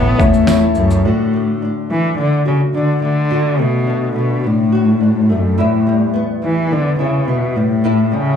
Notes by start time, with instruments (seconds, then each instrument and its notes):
Already playing: upright bass A1, nylon-string guitar A2 E3 A3 C#4 E4, upright piano A3 E4 C#5, cello B3, harmonium E4 C#5 A5
0.18 upright bass E2, upright piano A3 E4 C#5, cello A3, nylon-string guitar C#4, kick, shaker
0.34 shaker
0.47 nylon-string guitar E4, snare, tambourine, shaker
0.75 upright bass C#2, cello F#2, nylon-string guitar A3, shaker
0.90 shaker
1.05 cello A2, nylon-string guitar D3 F#4
1.33 nylon-string guitar A3
1.62 nylon-string guitar D4
1.90 cello E3, nylon-string guitar A3
2.18 cello D3, nylon-string guitar D4
2.45 cello C#3, nylon-string guitar F#4
2.74 cello D3, nylon-string guitar D4
3.02 cello D3, nylon-string guitar A3
3.30 nylon-string guitar D3 F#4
3.59 cello B2, nylon-string guitar A3
3.87 nylon-string guitar D4
4.16 cello B2, nylon-string guitar A3
4.44 cello A2, nylon-string guitar D4
4.72 nylon-string guitar F#4
5.00 nylon-string guitar D4
5.29 cello F#2, nylon-string guitar A3
5.58 nylon-string guitar E2 E4, cello A2
5.87 nylon-string guitar G3
6.14 nylon-string guitar B3
6.42 cello E3, nylon-string guitar G3
6.71 cello D3, nylon-string guitar B3
6.99 cello C#3, nylon-string guitar E4
7.28 cello B2, nylon-string guitar B3
7.56 cello A2, nylon-string guitar G3
7.84 nylon-string guitar A2 E4
8.11 cello C#3, nylon-string guitar G3